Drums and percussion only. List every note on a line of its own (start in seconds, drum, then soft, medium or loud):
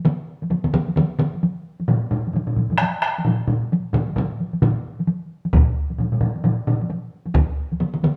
0.05 taiko mid loud
0.05 taiko high medium
0.42 taiko high medium
0.50 taiko mid medium
0.50 taiko high medium
0.64 taiko mid medium
0.74 taiko mid loud
0.74 taiko high medium
0.87 taiko high medium
0.96 taiko mid medium
0.96 taiko high medium
1.19 taiko mid loud
1.34 taiko high medium
1.43 taiko high medium
1.80 taiko high medium
1.88 taiko low-mid loud
1.88 taiko high medium
2.11 taiko low-mid medium
2.27 taiko high medium
2.33 taiko low-mid medium
2.33 taiko high medium
2.47 taiko low-mid medium
2.56 taiko low-mid medium
2.56 taiko high soft
2.70 taiko low-mid medium
2.70 taiko high medium
2.78 taiko rim medium
2.78 taiko high medium
3.02 taiko rim medium
3.19 taiko high medium
3.25 taiko low-mid loud
3.25 taiko high medium
3.48 taiko low-mid loud
3.72 taiko high medium
3.93 taiko low-mid medium
3.93 taiko mid medium
4.08 taiko high medium
4.16 taiko low-mid loud
4.16 taiko mid loud
4.16 taiko high medium
4.40 taiko high medium
4.53 taiko high medium
4.62 taiko low-mid loud
4.62 taiko mid medium
4.62 taiko high medium
4.99 taiko high medium
5.07 taiko high medium
5.45 taiko high soft
5.53 taiko loud
5.53 taiko low-mid loud
5.53 taiko high medium
5.90 taiko high medium
5.98 taiko low-mid medium
5.98 taiko high medium
6.12 taiko low-mid medium
6.21 taiko low-mid medium
6.21 taiko high soft
6.36 taiko high medium
6.44 taiko low-mid medium
6.44 taiko high medium
6.67 taiko low-mid loud
6.81 taiko high medium
6.90 taiko high medium
7.26 taiko high medium
7.34 taiko loud
7.34 taiko mid loud
7.34 taiko high medium
7.72 taiko high medium
7.81 taiko mid medium
7.81 taiko high medium
7.94 taiko mid medium
8.03 taiko mid medium
8.03 taiko high soft